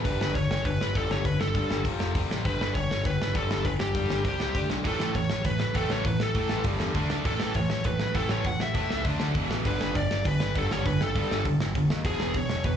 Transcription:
0.05 picked electric bass G1, distorted electric guitar G2 D3 G3, lead electric guitar B4, kick, open hi-hat
0.20 picked electric bass G1, snare
0.35 picked electric bass G1, distorted electric guitar G2 D3, lead electric guitar C#5, kick, open hi-hat
0.50 picked electric bass G1, snare
0.65 picked electric bass G1, distorted electric guitar G2 D3, lead electric guitar B4, kick, open hi-hat
0.80 picked electric bass G1, snare
0.95 picked electric bass G1, distorted electric guitar G2 D3 G3, lead electric guitar A4, kick, open hi-hat
1.10 picked electric bass G1, lead electric guitar C#5, snare
1.25 picked electric bass G1, distorted electric guitar G2 D3, lead electric guitar B4, kick, open hi-hat
1.40 picked electric bass G1, lead electric guitar A4, snare
1.55 picked electric bass G2, distorted electric guitar G2 D3 G3, kick, open hi-hat
1.70 picked electric bass G1, snare
1.85 picked electric bass F1, distorted electric guitar F2 C3 F3, kick, open hi-hat
2.00 picked electric bass F1, snare
2.15 picked electric bass C2, distorted electric guitar C3 G3 C4, kick, open hi-hat
2.29 picked electric bass A1, snare
2.45 picked electric bass G1, distorted electric guitar G2 D3 G3, lead electric guitar B4, kick, open hi-hat
2.60 picked electric bass G1, snare
2.74 picked electric bass G1, distorted electric guitar G2 D3, lead electric guitar C#5, kick, open hi-hat
2.90 picked electric bass G1, snare
3.04 picked electric bass G1, distorted electric guitar G2 D3, lead electric guitar B4, kick, open hi-hat
3.20 picked electric bass G1, snare
3.35 picked electric bass G1, distorted electric guitar G2 D3 G3, lead electric guitar A4, kick, open hi-hat
3.50 picked electric bass G1, snare
3.64 picked electric bass G1, distorted electric guitar G2 D3, lead electric guitar B4, kick, open hi-hat
3.80 picked electric bass G1, lead electric guitar G4, snare
3.94 distorted electric guitar G2 D3 G3, picked electric bass G2, kick, open hi-hat
4.09 picked electric bass G1, snare
4.25 picked electric bass C2, distorted electric guitar C3 G3 C4, lead electric guitar G4, kick, open hi-hat
4.40 picked electric bass C2, snare
4.54 picked electric bass D2, distorted electric guitar D3 A3 D4, kick, open hi-hat
4.70 picked electric bass B1, snare
4.85 picked electric bass A1, distorted electric guitar A2 E3 A3, lead electric guitar A4, kick, open hi-hat
5.00 picked electric bass A1, snare
5.15 picked electric bass A1, distorted electric guitar A2 E3, lead electric guitar C#5, kick, open hi-hat
5.30 picked electric bass A1, snare
5.44 picked electric bass A1, distorted electric guitar A2 E3, lead electric guitar B4, kick, open hi-hat
5.60 picked electric bass A1, snare
5.74 picked electric bass A1, distorted electric guitar A2 E3 A3, lead electric guitar A4, kick, open hi-hat
5.90 picked electric bass A1, lead electric guitar C#5, snare
6.05 picked electric bass A1, distorted electric guitar A2 E3, lead electric guitar B4, kick, open hi-hat
6.20 picked electric bass A1, lead electric guitar A4, snare
6.34 distorted electric guitar A2 E3 A3, picked electric bass A2, kick, open hi-hat
6.49 picked electric bass A1, snare
6.64 picked electric bass G1, distorted electric guitar G2 D3 G3, kick, open hi-hat
6.80 picked electric bass E2, snare
6.94 picked electric bass D2, distorted electric guitar D3 A3 D4, kick, open hi-hat
7.10 picked electric bass D2, snare
7.25 picked electric bass A1, distorted electric guitar A2 E3 A3, lead electric guitar A4, kick, open hi-hat
7.40 picked electric bass A1, snare
7.54 picked electric bass A1, distorted electric guitar A2 E3, lead electric guitar C#5, kick, open hi-hat
7.70 picked electric bass A1, snare
7.84 picked electric bass A1, distorted electric guitar A2 E3, lead electric guitar B4, kick, open hi-hat
7.99 picked electric bass A1, snare
8.15 picked electric bass A1, distorted electric guitar A2 E3 A3, lead electric guitar A4, kick, open hi-hat
8.29 picked electric bass A1, lead electric guitar C#5, snare
8.44 picked electric bass A1, distorted electric guitar A2 E3, lead electric guitar F#5, kick, open hi-hat
8.60 picked electric bass A1, lead electric guitar E5, snare
8.74 picked electric bass A2, distorted electric guitar A2 E3 A3, kick, open hi-hat
8.90 picked electric bass C#2, snare
9.05 picked electric bass D2, distorted electric guitar D3 A3 D4, kick, open hi-hat
9.20 picked electric bass D2, snare
9.35 picked electric bass E1, distorted electric guitar E2 B2 E3, kick, open hi-hat
9.50 picked electric bass A1, snare
9.65 picked electric bass G1, distorted electric guitar G2 D3 G3, lead electric guitar B4, kick, open hi-hat
9.81 picked electric bass G1, snare
9.95 picked electric bass G1, distorted electric guitar G2 D3, lead electric guitar D5, kick, open hi-hat
10.11 picked electric bass G1, snare
10.25 picked electric bass G1, distorted electric guitar G2 D3, lead electric guitar B4, kick, open hi-hat
10.40 picked electric bass G1, snare
10.55 picked electric bass G1, distorted electric guitar G2 D3 G3, lead electric guitar A4, kick, open hi-hat
10.71 picked electric bass G1, lead electric guitar C#5, snare
10.85 picked electric bass G1, distorted electric guitar G2 D3, lead electric guitar B4, kick, open hi-hat
11.01 picked electric bass G1, lead electric guitar A4, snare
11.15 picked electric bass G2, distorted electric guitar G2 D3 G3, kick, open hi-hat
11.31 picked electric bass G1, snare
11.45 picked electric bass E1, distorted electric guitar G2 D3, kick, open hi-hat
11.60 picked electric bass G1, snare
11.75 picked electric bass G1, distorted electric guitar G2 D3, kick, open hi-hat
11.90 picked electric bass D#2, snare
12.04 picked electric bass E1, distorted electric guitar E2 B2 E3, lead electric guitar G#4, kick, open hi-hat
12.20 picked electric bass E1, snare
12.34 picked electric bass E1, distorted electric guitar E2 B2, lead electric guitar C#5, kick, open hi-hat
12.49 picked electric bass E1, snare
12.64 picked electric bass E1, distorted electric guitar E2 B2, lead electric guitar B4, kick, open hi-hat

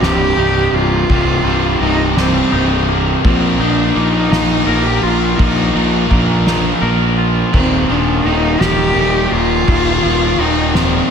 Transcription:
Already playing: clean electric guitar C2 C3
0.02 fingered electric bass C1, overdriven electric guitar C2 G2 C3, clean electric guitar G3, cello G4, snare, ride
0.37 fingered electric bass C1, overdriven electric guitar C2 G2 C3, clean electric guitar D#4, ride
0.73 fingered electric bass C1, clean electric guitar A#3, cello F4, ride
1.08 fingered electric bass C1, clean electric guitar C2, overdriven electric guitar C2 G2 C3, kick, ride
1.44 fingered electric bass C1, overdriven electric guitar C2 G2 C3, clean electric guitar G3, ride
1.79 fingered electric bass C1, overdriven electric guitar C2 G2 C3, clean electric guitar C3, cello D#4, ride
2.15 overdriven electric guitar C2 G2 C3, clean electric guitar G3, cello C4, snare, ride
2.52 fingered electric bass C1, overdriven electric guitar C2 G2 C3, clean electric guitar D#4, ride
2.88 clean electric guitar A#3, ride
3.24 fingered electric bass A#1, clean electric guitar A#2, overdriven electric guitar A#2 F3 A#3, cello C4, kick, ride
3.59 fingered electric bass A#1, overdriven electric guitar A#2 F3 A#3, cello D4, clean electric guitar D#4, ride
3.94 fingered electric bass A#1, overdriven electric guitar A#2 F3 A#3, clean electric guitar A#3, cello D#4, ride
4.30 fingered electric bass A#1, overdriven electric guitar A#2 F3 A#3, clean electric guitar D#4, snare, ride
4.67 fingered electric bass A#1, overdriven electric guitar A#2 F3 A#3, clean electric guitar A#4, ride
4.84 cello G4
5.02 fingered electric bass A#1, cello F4, clean electric guitar F4, ride
5.38 fingered electric bass A#1, overdriven electric guitar A#2 F3 A#3, clean electric guitar A#2, cello D#4, kick, ride
5.75 fingered electric bass A#1, overdriven electric guitar A#2 F3 A#3, clean electric guitar D#4, ride
6.10 fingered electric bass A#1, overdriven electric guitar A#2 F3 A#3, clean electric guitar A#3, kick, ride
6.46 overdriven electric guitar A#2 F3 A#3, clean electric guitar D#4, snare, ride
6.81 fingered electric bass A#1, overdriven electric guitar A#2 F3 A#3, clean electric guitar A#4, ride
7.18 clean electric guitar F4, ride
7.53 fingered electric bass D#1, overdriven electric guitar D#2 A#2 D#3, clean electric guitar D#2, cello C4, kick, crash
7.89 fingered electric bass D#1, overdriven electric guitar D#2 A#2 D#3, clean electric guitar F3, cello D4, ride
8.24 fingered electric bass D#1, overdriven electric guitar D#2 A#2 D#3, clean electric guitar D#3, cello D#4, ride
8.60 fingered electric bass D#1, overdriven electric guitar D#2 A#2 D#3, clean electric guitar F3, cello G4, snare, ride
8.95 fingered electric bass D#1, overdriven electric guitar D#2 A#2 D#3, clean electric guitar D#4, ride
9.31 fingered electric bass D#1, clean electric guitar A#3, cello F4, ride
9.67 fingered electric bass D#1, overdriven electric guitar D#2 A#2 D#3, clean electric guitar D#2, kick, ride
10.02 fingered electric bass D#1, overdriven electric guitar D#2 A#2 D#3, clean electric guitar F3, ride
10.38 fingered electric bass D#1, overdriven electric guitar D#2 A#2 D#3, clean electric guitar D#3, cello D#4, ride
10.74 overdriven electric guitar D#2 A#2 D#3, clean electric guitar F3, cello C4, snare, ride

